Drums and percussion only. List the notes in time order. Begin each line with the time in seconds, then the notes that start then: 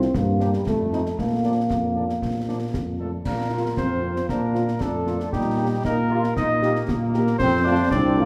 0.02 snare
0.14 concert bass drum, snare
0.40 snare
0.53 snare
0.67 concert bass drum, snare
0.93 snare
1.06 snare
1.19 concert bass drum, snare
1.70 concert bass drum, snare
2.09 snare
2.22 concert bass drum, snare
2.74 concert bass drum, snare
3.25 concert bass drum, snare, crash
3.77 concert bass drum, snare
4.16 snare
4.29 concert bass drum, snare
4.55 snare
4.68 snare
4.81 concert bass drum, snare
5.07 snare
5.20 snare
5.33 concert bass drum, snare
5.85 concert bass drum, snare
6.24 snare
6.37 concert bass drum, snare
6.62 snare
6.76 snare
6.88 concert bass drum, snare
7.14 snare
7.27 snare
7.40 concert bass drum, snare, crash
7.91 concert bass drum, snare